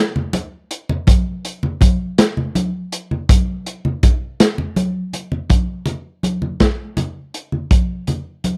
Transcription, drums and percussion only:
0.16 low conga
0.33 closed hi-hat, high conga, low conga
0.71 closed hi-hat
0.89 low conga
1.07 kick, closed hi-hat, high conga, low conga
1.45 closed hi-hat
1.63 low conga
1.81 kick, closed hi-hat, high conga
2.18 snare, closed hi-hat
2.37 low conga
2.55 closed hi-hat, high conga, low conga
2.92 closed hi-hat
3.11 low conga
3.29 kick, closed hi-hat, high conga, low conga
3.66 closed hi-hat
3.85 low conga
4.03 kick, closed hi-hat, high conga, low conga
4.40 snare, closed hi-hat
4.58 low conga
4.76 closed hi-hat, high conga
5.13 closed hi-hat, low conga
5.32 low conga
5.50 kick, closed hi-hat, high conga
5.86 closed hi-hat, low conga
6.23 closed hi-hat, high conga, low conga
6.42 low conga
6.60 kick, snare, closed hi-hat
6.97 closed hi-hat, high conga, low conga
7.34 closed hi-hat
7.52 low conga
7.71 kick, closed hi-hat, high conga
8.07 closed hi-hat, low conga
8.44 closed hi-hat, high conga, low conga

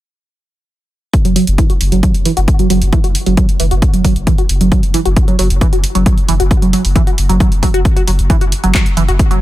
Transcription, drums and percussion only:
1.14 kick, closed hi-hat
1.25 closed hi-hat
1.36 open hi-hat
1.47 closed hi-hat
1.58 kick, closed hi-hat
1.70 closed hi-hat
1.81 open hi-hat
1.92 closed hi-hat
2.03 kick, closed hi-hat
2.14 closed hi-hat
2.25 open hi-hat
2.37 closed hi-hat
2.48 kick, closed hi-hat
2.59 closed hi-hat
2.70 open hi-hat
2.82 closed hi-hat
2.93 kick, closed hi-hat
3.04 closed hi-hat
3.15 open hi-hat
3.26 open hi-hat
3.37 kick, closed hi-hat
3.49 closed hi-hat
3.60 open hi-hat
3.71 closed hi-hat
3.82 kick, closed hi-hat
3.94 closed hi-hat
4.05 kick, open hi-hat
4.16 closed hi-hat
4.27 kick, closed hi-hat
4.38 closed hi-hat
4.49 open hi-hat
4.61 closed hi-hat
4.72 kick, closed hi-hat
4.83 closed hi-hat
4.94 open hi-hat
5.05 closed hi-hat
5.17 kick, closed hi-hat
5.28 closed hi-hat
5.39 open hi-hat
5.50 closed hi-hat
5.61 kick, closed hi-hat
5.73 closed hi-hat
5.84 open hi-hat
5.95 closed hi-hat
6.06 kick, closed hi-hat
6.18 closed hi-hat
6.29 open hi-hat
6.40 closed hi-hat
6.51 kick, closed hi-hat
6.62 closed hi-hat
6.73 open hi-hat
6.85 open hi-hat
6.96 kick, closed hi-hat
7.07 closed hi-hat
7.18 open hi-hat
7.29 closed hi-hat
7.40 kick, closed hi-hat
7.52 closed hi-hat
7.63 kick, open hi-hat
7.74 closed hi-hat
7.85 kick, closed hi-hat
7.97 closed hi-hat
8.08 open hi-hat
8.19 closed hi-hat
8.30 kick, closed hi-hat
8.41 closed hi-hat
8.52 open hi-hat
8.64 closed hi-hat
8.75 kick, clap, closed hi-hat
8.86 closed hi-hat
8.97 open hi-hat
9.08 closed hi-hat
9.19 kick, closed hi-hat
9.31 closed hi-hat

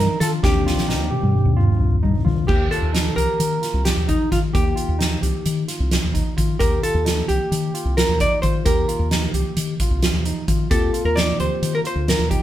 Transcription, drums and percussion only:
0.21 snare, closed hi-hat
0.43 kick, snare
0.67 snare
0.78 snare
0.89 snare
1.12 high tom
1.24 high tom
1.35 mid tom
1.58 mid tom
1.70 mid tom
1.81 mid tom
2.04 floor tom
2.15 floor tom
2.26 floor tom
2.49 kick, crash
2.72 closed hi-hat
2.95 snare, closed hi-hat
3.18 closed hi-hat
3.40 closed hi-hat
3.63 snare, closed hi-hat
3.85 snare, closed hi-hat
4.09 kick, closed hi-hat
4.32 kick, snare, closed hi-hat
4.55 kick, closed hi-hat
4.77 closed hi-hat
5.01 snare, closed hi-hat
5.23 closed hi-hat
5.46 closed hi-hat
5.68 snare, closed hi-hat
5.91 snare, closed hi-hat
6.15 kick, closed hi-hat
6.38 kick, closed hi-hat
6.60 kick, closed hi-hat
6.84 closed hi-hat
7.06 snare, closed hi-hat
7.29 closed hi-hat
7.52 closed hi-hat
7.75 closed hi-hat
7.98 snare, closed hi-hat
8.20 kick, closed hi-hat
8.43 kick, closed hi-hat
8.66 kick, closed hi-hat
8.89 closed hi-hat
9.11 snare, closed hi-hat
9.34 closed hi-hat
9.57 closed hi-hat
9.80 kick, closed hi-hat
10.03 snare, closed hi-hat
10.25 closed hi-hat
10.48 kick, closed hi-hat
10.71 kick, closed hi-hat
10.94 closed hi-hat
11.17 snare, closed hi-hat
11.40 closed hi-hat
11.63 closed hi-hat
11.85 closed hi-hat
12.08 snare, closed hi-hat
12.31 kick, closed hi-hat

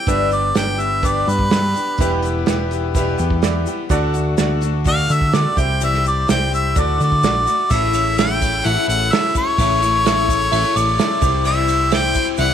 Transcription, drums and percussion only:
0.06 kick, closed hi-hat, shaker
0.31 closed hi-hat, shaker
0.55 snare, closed hi-hat, shaker
0.79 closed hi-hat, shaker
1.03 kick, closed hi-hat, shaker
1.27 closed hi-hat, shaker
1.39 kick
1.50 snare, closed hi-hat, shaker
1.74 closed hi-hat, shaker
1.98 kick, closed hi-hat, shaker
2.22 closed hi-hat, shaker
2.46 snare, closed hi-hat, shaker
2.71 closed hi-hat, shaker
2.95 kick, closed hi-hat, shaker
3.18 closed hi-hat, shaker
3.30 kick
3.42 snare, closed hi-hat, shaker
3.66 closed hi-hat, shaker
3.89 kick, closed hi-hat, shaker
4.13 closed hi-hat, shaker
4.37 snare, closed hi-hat, shaker
4.61 closed hi-hat, shaker
4.85 kick, closed hi-hat, shaker
5.09 closed hi-hat, shaker
5.21 kick
5.33 snare, closed hi-hat, shaker
5.57 kick, closed hi-hat, shaker
5.81 closed hi-hat, shaker
5.94 snare
6.04 closed hi-hat, shaker
6.28 snare, closed hi-hat, shaker
6.52 closed hi-hat, shaker
6.76 kick, closed hi-hat, shaker
7.00 closed hi-hat, shaker
7.12 kick
7.23 kick, snare, closed hi-hat, shaker
7.47 closed hi-hat, shaker
7.70 kick, crash, shaker
7.93 ride, shaker
8.18 snare, ride, shaker
8.42 kick, ride, shaker
8.54 shaker
8.65 ride, shaker
8.89 ride, shaker
9.02 shaker
9.12 snare, ride, shaker
9.35 kick, ride, shaker
9.58 kick, ride, shaker
9.82 ride, shaker
10.06 snare, ride, shaker
10.29 kick, ride, shaker
10.42 shaker
10.52 ride, shaker
10.76 ride, shaker
10.88 shaker
10.99 snare, ride, shaker
11.22 kick, ride, shaker
11.45 crash, shaker
11.68 ride, shaker
11.91 snare, ride, shaker
12.14 kick, ride, shaker
12.26 shaker
12.37 ride, shaker

